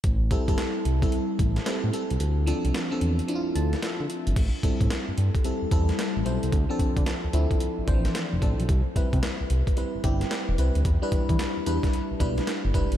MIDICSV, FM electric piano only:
0, 0, Header, 1, 2, 480
1, 0, Start_track
1, 0, Key_signature, 0, "minor"
1, 0, Tempo, 540541
1, 36, Time_signature, 4, 2, 24, 8
1, 11517, End_track
2, 0, Start_track
2, 0, Title_t, "FM electric piano"
2, 0, Program_c, 0, 5
2, 225, Control_c, 0, 64, 127
2, 273, Note_on_c, 0, 55, 89
2, 276, Note_on_c, 0, 60, 77
2, 280, Note_on_c, 0, 64, 83
2, 284, Note_on_c, 0, 69, 90
2, 409, Note_off_c, 0, 55, 0
2, 410, Note_off_c, 0, 60, 0
2, 412, Note_off_c, 0, 64, 0
2, 414, Note_off_c, 0, 69, 0
2, 424, Note_on_c, 0, 55, 85
2, 429, Note_on_c, 0, 60, 68
2, 432, Note_on_c, 0, 64, 74
2, 437, Note_on_c, 0, 69, 93
2, 832, Note_off_c, 0, 55, 0
2, 835, Note_off_c, 0, 60, 0
2, 836, Note_off_c, 0, 64, 0
2, 839, Note_off_c, 0, 69, 0
2, 906, Note_on_c, 0, 55, 75
2, 909, Note_on_c, 0, 60, 68
2, 913, Note_on_c, 0, 64, 71
2, 915, Note_on_c, 0, 69, 86
2, 1422, Note_off_c, 0, 55, 0
2, 1423, Note_off_c, 0, 60, 0
2, 1425, Note_off_c, 0, 64, 0
2, 1426, Note_off_c, 0, 69, 0
2, 1469, Note_on_c, 0, 55, 83
2, 1472, Note_on_c, 0, 60, 83
2, 1475, Note_on_c, 0, 64, 80
2, 1480, Note_on_c, 0, 69, 100
2, 1691, Note_off_c, 0, 55, 0
2, 1693, Note_off_c, 0, 60, 0
2, 1694, Note_off_c, 0, 64, 0
2, 1697, Note_off_c, 0, 69, 0
2, 1709, Note_on_c, 0, 55, 74
2, 1714, Note_on_c, 0, 60, 73
2, 1719, Note_on_c, 0, 64, 68
2, 1721, Note_on_c, 0, 69, 85
2, 1952, Note_off_c, 0, 55, 0
2, 1955, Note_off_c, 0, 60, 0
2, 1957, Note_off_c, 0, 64, 0
2, 1958, Note_off_c, 0, 69, 0
2, 1968, Control_c, 0, 64, 0
2, 2129, Control_c, 0, 64, 127
2, 2188, Note_on_c, 0, 53, 101
2, 2192, Note_on_c, 0, 60, 85
2, 2195, Note_on_c, 0, 62, 85
2, 2199, Note_on_c, 0, 69, 100
2, 2530, Note_off_c, 0, 53, 0
2, 2532, Note_off_c, 0, 60, 0
2, 2533, Note_off_c, 0, 62, 0
2, 2535, Note_off_c, 0, 69, 0
2, 2583, Note_on_c, 0, 53, 85
2, 2586, Note_on_c, 0, 60, 76
2, 2587, Note_on_c, 0, 62, 79
2, 2593, Note_on_c, 0, 69, 92
2, 2881, Note_off_c, 0, 53, 0
2, 2883, Note_off_c, 0, 60, 0
2, 2883, Note_off_c, 0, 62, 0
2, 2886, Note_off_c, 0, 69, 0
2, 2909, Note_on_c, 0, 53, 84
2, 2914, Note_on_c, 0, 60, 73
2, 2917, Note_on_c, 0, 62, 75
2, 2922, Note_on_c, 0, 64, 69
2, 2978, Note_on_c, 0, 65, 96
2, 2992, Note_off_c, 0, 64, 0
2, 3156, Note_on_c, 0, 81, 68
2, 3379, Note_off_c, 0, 81, 0
2, 3399, Note_on_c, 0, 76, 70
2, 3789, Note_off_c, 0, 53, 0
2, 3791, Note_off_c, 0, 60, 0
2, 3793, Note_off_c, 0, 62, 0
2, 3823, Note_off_c, 0, 65, 0
2, 3844, Note_off_c, 0, 76, 0
2, 3888, Control_c, 0, 64, 0
2, 4051, Control_c, 0, 64, 127
2, 4111, Note_on_c, 0, 55, 80
2, 4114, Note_on_c, 0, 60, 79
2, 4118, Note_on_c, 0, 64, 71
2, 4121, Note_on_c, 0, 69, 93
2, 4770, Note_off_c, 0, 55, 0
2, 4772, Note_off_c, 0, 60, 0
2, 4774, Note_off_c, 0, 64, 0
2, 4776, Note_off_c, 0, 69, 0
2, 4832, Note_on_c, 0, 55, 72
2, 4835, Note_on_c, 0, 60, 64
2, 4838, Note_on_c, 0, 64, 66
2, 4843, Note_on_c, 0, 69, 81
2, 5053, Note_off_c, 0, 55, 0
2, 5054, Note_off_c, 0, 60, 0
2, 5056, Note_off_c, 0, 64, 0
2, 5058, Note_off_c, 0, 69, 0
2, 5071, Note_on_c, 0, 55, 86
2, 5073, Note_on_c, 0, 60, 82
2, 5077, Note_on_c, 0, 64, 85
2, 5081, Note_on_c, 0, 69, 105
2, 5511, Note_off_c, 0, 55, 0
2, 5513, Note_off_c, 0, 60, 0
2, 5514, Note_off_c, 0, 64, 0
2, 5517, Note_off_c, 0, 69, 0
2, 5549, Note_on_c, 0, 55, 81
2, 5551, Note_on_c, 0, 60, 73
2, 5556, Note_on_c, 0, 64, 72
2, 5560, Note_on_c, 0, 72, 85
2, 5792, Note_off_c, 0, 55, 0
2, 5793, Note_off_c, 0, 60, 0
2, 5795, Note_off_c, 0, 64, 0
2, 5798, Note_off_c, 0, 72, 0
2, 5808, Control_c, 0, 64, 0
2, 5941, Note_on_c, 0, 53, 90
2, 5946, Note_on_c, 0, 60, 86
2, 5949, Note_on_c, 0, 62, 83
2, 5954, Note_on_c, 0, 69, 107
2, 5979, Control_c, 0, 64, 127
2, 6459, Note_off_c, 0, 53, 0
2, 6461, Note_off_c, 0, 60, 0
2, 6463, Note_off_c, 0, 62, 0
2, 6466, Note_off_c, 0, 69, 0
2, 6508, Note_on_c, 0, 53, 92
2, 6511, Note_on_c, 0, 60, 89
2, 6514, Note_on_c, 0, 62, 83
2, 6520, Note_on_c, 0, 64, 100
2, 6950, Note_off_c, 0, 53, 0
2, 6952, Note_off_c, 0, 60, 0
2, 6953, Note_off_c, 0, 62, 0
2, 6956, Note_off_c, 0, 64, 0
2, 6988, Note_on_c, 0, 52, 71
2, 6993, Note_on_c, 0, 60, 82
2, 6996, Note_on_c, 0, 62, 78
2, 6999, Note_on_c, 0, 72, 93
2, 7047, Note_on_c, 0, 53, 87
2, 7065, Note_off_c, 0, 52, 0
2, 7432, Note_off_c, 0, 60, 0
2, 7434, Note_off_c, 0, 62, 0
2, 7435, Note_off_c, 0, 72, 0
2, 7459, Note_off_c, 0, 53, 0
2, 7470, Note_on_c, 0, 53, 86
2, 7474, Note_on_c, 0, 60, 79
2, 7476, Note_on_c, 0, 62, 76
2, 7481, Note_on_c, 0, 69, 85
2, 7713, Note_off_c, 0, 53, 0
2, 7714, Note_off_c, 0, 60, 0
2, 7716, Note_off_c, 0, 62, 0
2, 7718, Note_off_c, 0, 69, 0
2, 7726, Control_c, 0, 64, 0
2, 7866, Control_c, 0, 64, 127
2, 7952, Note_on_c, 0, 55, 79
2, 7956, Note_on_c, 0, 60, 72
2, 7960, Note_on_c, 0, 64, 78
2, 7964, Note_on_c, 0, 71, 83
2, 8611, Note_off_c, 0, 55, 0
2, 8613, Note_off_c, 0, 60, 0
2, 8615, Note_off_c, 0, 64, 0
2, 8617, Note_off_c, 0, 71, 0
2, 8672, Note_on_c, 0, 55, 72
2, 8675, Note_on_c, 0, 60, 69
2, 8679, Note_on_c, 0, 64, 65
2, 8683, Note_on_c, 0, 71, 81
2, 8893, Note_off_c, 0, 55, 0
2, 8894, Note_off_c, 0, 60, 0
2, 8896, Note_off_c, 0, 64, 0
2, 8898, Note_off_c, 0, 71, 0
2, 8911, Note_on_c, 0, 55, 97
2, 8914, Note_on_c, 0, 60, 84
2, 8919, Note_on_c, 0, 64, 80
2, 8921, Note_on_c, 0, 67, 98
2, 9351, Note_off_c, 0, 55, 0
2, 9353, Note_off_c, 0, 60, 0
2, 9355, Note_off_c, 0, 64, 0
2, 9356, Note_off_c, 0, 67, 0
2, 9394, Note_on_c, 0, 55, 75
2, 9396, Note_on_c, 0, 60, 68
2, 9401, Note_on_c, 0, 64, 72
2, 9405, Note_on_c, 0, 71, 86
2, 9635, Note_off_c, 0, 55, 0
2, 9636, Note_off_c, 0, 60, 0
2, 9638, Note_off_c, 0, 64, 0
2, 9640, Note_off_c, 0, 71, 0
2, 9647, Control_c, 0, 64, 0
2, 9775, Control_c, 0, 64, 127
2, 9785, Note_on_c, 0, 55, 93
2, 9788, Note_on_c, 0, 62, 89
2, 9792, Note_on_c, 0, 64, 88
2, 9795, Note_on_c, 0, 71, 100
2, 10301, Note_off_c, 0, 55, 0
2, 10303, Note_off_c, 0, 62, 0
2, 10305, Note_off_c, 0, 64, 0
2, 10306, Note_off_c, 0, 71, 0
2, 10354, Note_on_c, 0, 55, 91
2, 10357, Note_on_c, 0, 62, 87
2, 10361, Note_on_c, 0, 64, 83
2, 10364, Note_on_c, 0, 71, 98
2, 10793, Note_off_c, 0, 55, 0
2, 10794, Note_off_c, 0, 62, 0
2, 10796, Note_off_c, 0, 64, 0
2, 10798, Note_off_c, 0, 71, 0
2, 10829, Note_on_c, 0, 55, 90
2, 10833, Note_on_c, 0, 62, 83
2, 10837, Note_on_c, 0, 64, 76
2, 10841, Note_on_c, 0, 71, 98
2, 11270, Note_off_c, 0, 55, 0
2, 11272, Note_off_c, 0, 62, 0
2, 11274, Note_off_c, 0, 64, 0
2, 11276, Note_off_c, 0, 71, 0
2, 11310, Note_on_c, 0, 55, 84
2, 11314, Note_on_c, 0, 62, 75
2, 11319, Note_on_c, 0, 64, 77
2, 11321, Note_on_c, 0, 71, 94
2, 11517, Note_off_c, 0, 55, 0
2, 11517, Note_off_c, 0, 62, 0
2, 11517, Note_off_c, 0, 64, 0
2, 11517, Note_off_c, 0, 71, 0
2, 11517, End_track
0, 0, End_of_file